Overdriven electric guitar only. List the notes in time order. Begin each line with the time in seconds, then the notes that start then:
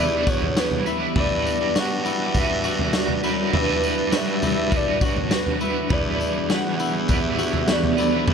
Already playing: G3 D4
0.00 E4 B4
0.86 D4 E4 B4
1.15 G3 D4 F#4
1.20 B4
2.35 G3 D4 F#4 B4
3.23 D4 F#4 B4
3.52 G3 D4
3.56 F#4 B4
4.71 G3 D4 F#4 B4
5.60 D4 F#4 B4
5.89 E3 G3 D4 E4
5.94 B4
7.08 G3 D4 E4 B4
7.97 D4 E4 B4
8.27 E3 G3 D4